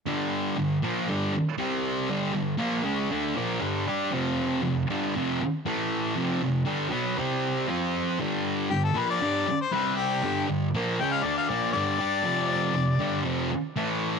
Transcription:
<<
  \new Staff \with { instrumentName = "Harmonica" } { \time 4/4 \key f \lydian \tempo 4 = 118 r1 | r1 | r1 | r1 |
r4 g'16 a'16 b'16 d''4 c''16 b'8 g'8~ | g'8 r4 g''16 f''16 d''16 f''16 d''8 d''4~ | d''2 r2 | }
  \new Staff \with { instrumentName = "Distorted electric guitar" } { \clef bass \time 4/4 \key f \lydian <g, d g>4 <g, d>8 <bes, f bes>8 <g, d g>8 r8 <c g c'>4 | <g, d g>8 <g, d>8 <bes, f bes>8 <cis aes cis'>8 <d a d'>8 <bes, f bes>8 <g, d g>8 <g d' g'>8 | <f, c f>4 <f, c>8 <g, d g>8 <f, c f>8 r8 <a, e a>4 | <f, c f>8 <f, c>8 <g, d g>8 <b, fis b>8 <c g c'>4 <f c' f'>4 |
<g, d g>4 <g, d>8 <bes, f bes>8 <g, d g>8 r8 <c g c'>4 | <g, d g>8 <g, d>8 <bes, f bes>8 <cis aes cis'>8 <d a d'>8 <bes, f bes>8 <g, d g>8 <g d' g'>8 | <f, c f>4 <f, c>8 <g, d g>8 <f, c f>8 r8 <a, e a>4 | }
>>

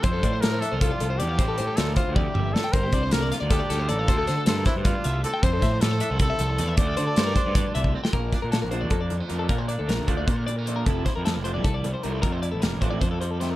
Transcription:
<<
  \new Staff \with { instrumentName = "Clean electric guitar" } { \time 7/8 \key bes \lydian \tempo 4 = 155 c''16 a'16 d''16 c''16 a'16 c''16 e''16 c''16 a'16 d''16 a'16 c''16 d''16 f''16 | c''16 a'16 c''16 a'16 c''16 bes'16 c''8 d''8 e''8 d''16 g''16 | bes'16 g'16 d''16 c''16 a'16 d''16 f''16 d''16 a'16 d''16 a'16 c''16 d''16 f''16 | c''16 a'16 c''16 a'16 c''16 bes'16 c''8 d''8 e''8 d''16 g''16 |
c''16 a'16 e''16 c''16 a'16 c''16 e''16 c''16 a'16 e''16 a'16 c''16 d''16 e''16 | c''16 a'16 c''16 a'16 c''16 bes'16 c''8 d''8 e''8 d''16 g''16 | bes'8 d''16 bes'16 a'16 bes'16 c''16 d''16 a'16 d''8 c''16 bes'16 a'16 | bes'16 c''16 d''16 a'16 bes'8 c''16 d''16 c''16 bes'16 d''16 bes'16 c''16 bes'16 |
a'8 c''16 bes'16 a'16 bes'16 c''16 d''16 a'16 d''8 c''16 bes'16 a'16 | bes'16 c''16 d''16 a'16 bes'8 c''16 d''16 c''16 a'16 c''16 a'16 c''16 bes'16 | }
  \new Staff \with { instrumentName = "Trumpet" } { \time 7/8 \key bes \lydian c''4 bes'8 a'8 f'4 g'8~ | g'4 a'8 f'8 g'4 a'8 | c''4 bes'8 r8 g'4 a'8~ | a'4 a'8 e'8 f'4 a'8 |
c''4 a'4 a'4. | d''2. r8 | r2. r8 | r2. r8 |
r2. r8 | r2. r8 | }
  \new Staff \with { instrumentName = "Clean electric guitar" } { \time 7/8 \key bes \lydian << { r4 g16 a16 d'16 f'16 c'4 a8 | <e g c'>4 g8 c'2 | r4 bes8 f'8 d'4 bes8 | r4 c'8 d'8 d'4 c'8 |
r4 g16 a16 d'16 e'16 c'4 a8 | r4 c'8 d'16 f'16 d'4 c'8 | bes8 d'8 a8 d'8 bes8 g16 a8. | bes8 d'8 a8 d'8 bes8 g16 a8. |
<f g a e'>8 e'8 g8 d'16 e'16 a8 g4 | a8 e'8 g8 d'16 e'16 a8 g4 | } \\ { f,8 f2 f4 | a,8 e4. c8 bes,8 a,8 | g,8 d2 d4 | d,8 d2 d4 |
f,8 f2 f4 | d,8 d2 d4 | bes,4. d4. f,8 | bes,4. d4. f,8 |
f,4. f4. c8 | f,4. f4. c8 | } >> }
  \new Staff \with { instrumentName = "Overdriven electric guitar" } { \clef bass \time 7/8 \key bes \lydian r2. r8 | r2. r8 | r2. r8 | r2. r8 |
r2. r8 | r2. r8 | <bes, f bes d'>8 r4 <bes, f bes d'>8 r4 <bes, f bes d'>8 | <bes, f bes d'>8 r4 <bes, f bes d'>8 r4 <bes, f bes d'>8 |
<c f a c'>8 r4 <c f a c'>8 r4 <c f a c'>8 | <c f a c'>8 r4 <c f a c'>8 r4 <c f a c'>8 | }
  \new Staff \with { instrumentName = "Picked electric bass" } { \clef bass \time 7/8 \key bes \lydian f,8 a,8 a,8 r16 c,8 r16 c,8 e,8 | a,,8 a,16 r16 d,8 r16 d,8 r16 g,,8 r8 | g,,8 c,8 c,8 r16 d,8 r16 d,8 a,,8 | d,8 d16 r16 g,8 r16 g,8 r16 c,8 r8 |
f,8 a,8 a,8 r16 c,8 r16 c,8 e,8 | d,8 d16 r16 g,8 r16 g,8 r16 c,8 r8 | bes,,8 r16 bes,16 bes,16 bes,,8 f,16 f,8 f,16 r16 f,8 | bes,8. d,16 bes,,16 d,8 d,16 bes,4. |
f,,8 r16 f,16 f,16 f,,8 c,16 c,8 c,16 r16 c,8 | f,8. a,,16 f,,16 a,,8 a,,16 f,4. | }
  \new DrumStaff \with { instrumentName = "Drums" } \drummode { \time 7/8 <hh bd>8 <hh bd>8 <hh sn>8 hh8 <hh bd>8 hh8 hh8 | <hh bd>8 hh8 <hh sn>8 <hh bd>8 <bd tommh>8 toml8 sn8 | <hh bd>8 <hh bd>8 <hh sn>8 <hh sn>8 <hh bd sn>8 <hh sn>8 hh8 | <hh bd>8 <hh sn>8 <hh sn>8 <hh bd sn>8 <hh bd>8 hh8 hh8 |
<hh bd>8 <hh bd sn>8 <hh sn>8 hh8 <hh bd>8 hh8 <hh sn>8 | <hh bd>8 hh8 <hh sn>8 <hh bd>8 <hh bd>8 hh16 bd8 sn16 | <hh bd>8 <hh bd sn>8 <hh sn>8 hh8 <hh bd>8 hh8 hh8 | <hh bd>8 hh8 <hh sn>8 <hh bd>8 <hh bd>8 hh8 hh8 |
<hh bd>8 <hh bd sn>8 <hh sn>8 hh8 <hh bd>8 hh8 hh8 | <hh bd>8 hh8 <hh sn>8 <hh bd>8 <hh bd>8 hh8 <hh sn>8 | }
>>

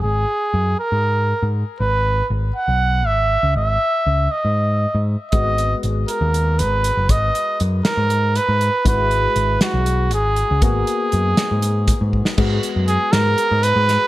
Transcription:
<<
  \new Staff \with { instrumentName = "Trumpet" } { \time 7/8 \key gis \minor \tempo 4 = 119 gis'4. ais'4. r8 | b'4 r8 fis''4 e''4 | e''4. dis''4. r8 | dis''4 r8 ais'4 b'4 |
dis''4 r8 ais'4 b'4 | b'4. fis'4 gis'4 | gis'2. r8 | r4 gis'8 ais'4 b'4 | }
  \new Staff \with { instrumentName = "Grand piano" } { \time 7/8 \key gis \minor r2. r8 | r2. r8 | r2. r8 | <gis b fis'>2.~ <gis b fis'>8~ |
<gis b fis'>2.~ <gis b fis'>8 | <gis e' fis'>2.~ <gis e' fis'>8 | <ais b fis'>2.~ <ais b fis'>8 | <gis b fis'>2.~ <gis b fis'>8 | }
  \new Staff \with { instrumentName = "Picked electric bass" } { \clef bass \time 7/8 \key gis \minor gis,,8 r8 fis,8 r16 gis,4 gis,8 r16 | gis,,4 gis,,8 r16 b,,8. gis,,8. cis,16 | gis,,8 r8 cis,8 r16 gis,4 gis,8 r16 | gis,,4 gis,,8 r16 dis,8. gis,,8. fis,,16 |
gis,,8 r8 fis,8 r16 gis,4 gis,8 r16 | gis,,4 gis,,8 r16 b,,8. gis,,8. cis,16 | gis,,8 r8 fis,8 r16 gis,4 gis,8 r16 | gis,8 r16 fis,8 r16 gis,8 r16 gis,8 gis,8 r16 | }
  \new DrumStaff \with { instrumentName = "Drums" } \drummode { \time 7/8 r4. r4 r4 | r4. r4 r4 | r4. r4 r4 | <hh bd>8 hh8 hh8 hh8 hh8 hh8 hh8 |
<hh bd>8 hh8 hh8 <hh sn>8 hh8 hh8 hh8 | <hh bd>8 hh8 hh8 <hh sn>8 hh8 hh8 hh8 | <hh bd>8 hh8 hh8 <hh sn>8 hh8 <hh bd>8 bd16 sn16 | <cymc bd>8 hh8 hh8 <hh sn>8 hh8 hh8 <hh sn>8 | }
>>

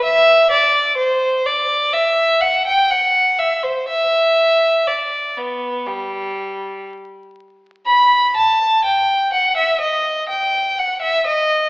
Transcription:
\new Staff \with { instrumentName = "Violin" } { \time 4/4 \key g \major \tempo 4 = 62 e''8 d''8 c''8 d''8 e''8 fis''16 g''16 fis''8 e''16 c''16 | e''4 d''8 b8 g4 r4 | b''8 a''8 g''8 fis''16 e''16 ees''8 g''8 fis''16 e''16 ees''8 | }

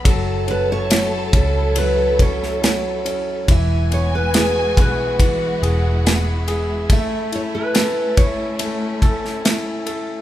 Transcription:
<<
  \new Staff \with { instrumentName = "Violin section" } { \time 4/4 \key e \major \tempo 4 = 70 a''2.~ a''8 r8 | gis''2 fis''2 | r1 | }
  \new Staff \with { instrumentName = "Nylon-string guitar" } { \time 4/4 \key e \major a'8 b'16 cis''8. a'8 b'8 cis''4 r8 | e''8 cis''16 b'8. b'2 r8 | e''8 cis''16 b'8. cis''2 r8 | }
  \new Staff \with { instrumentName = "String section" } { \time 4/4 \key e \major <fis e' a'>1 | <gis e' fis'>1 | <a cis'>1 | }
  \new Staff \with { instrumentName = "Grand piano" } { \time 4/4 \key e \major fis8 cis'8 fis8 cis'8 fis8 cis'8 fis8 cis'8 | e8 b8 gis'8 b8 e8 gis'8 b8 gis'8 | a8 e'8 a'8 e'8 a8 a'8 e'8 a'8 | }
  \new Staff \with { instrumentName = "Fingered electric bass" } { \clef bass \time 4/4 \key e \major fis,,4. cis,2~ cis,8 | e,,4. b,,4 e,,4. | r1 | }
  \new DrumStaff \with { instrumentName = "Drums" } \drummode { \time 4/4 <bd cymr>8 cymr8 <cymr sn>8 <bd cymr>8 cymr8 <bd cymr>16 sn16 <cymr sn>8 cymr8 | <bd cymr>8 cymr8 <cymr sn>8 <bd cymr>8 <bd cymr>8 cymr8 <cymr sn>8 cymr8 | <bd cymr>8 cymr8 <cymr sn>8 <bd cymr>8 cymr8 <bd cymr>16 sn16 <cymr sn>8 cymr8 | }
>>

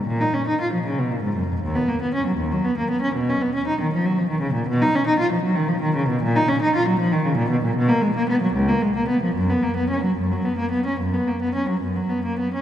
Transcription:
\new Staff \with { instrumentName = "Cello" } { \clef bass \time 12/8 \key fis \major \tempo 4. = 77 ais,16 dis'16 cis'16 dis'16 eis'16 eis16 cis16 b,16 ais,16 gis,16 fis,16 eis,16 dis,16 b16 ais16 b16 cis'16 fis16 dis,16 fis16 b16 ais16 b16 cis'16 | b,16 cis'16 b16 cis'16 dis'16 dis16 eis16 fis16 eis16 dis16 cis16 ais,16 b,16 dis'16 cis'16 dis'16 eis'16 eis16 fis16 dis16 eis16 dis16 cis16 b,16 | ais,16 dis'16 cis'16 dis'16 eis'16 fis16 eis16 dis16 cis16 ais,16 b,16 ais,16 b,16 ais16 gis16 ais16 b16 fis16 cis,16 ais16 gis16 ais16 b16 eis16 | fis,16 b16 ais16 b16 cis'16 fis16 fis,16 fis16 b16 ais16 b16 cis'16 fis,16 b16 ais16 b16 cis'16 fis16 fis,16 fis16 b16 ais16 b16 cis'16 | }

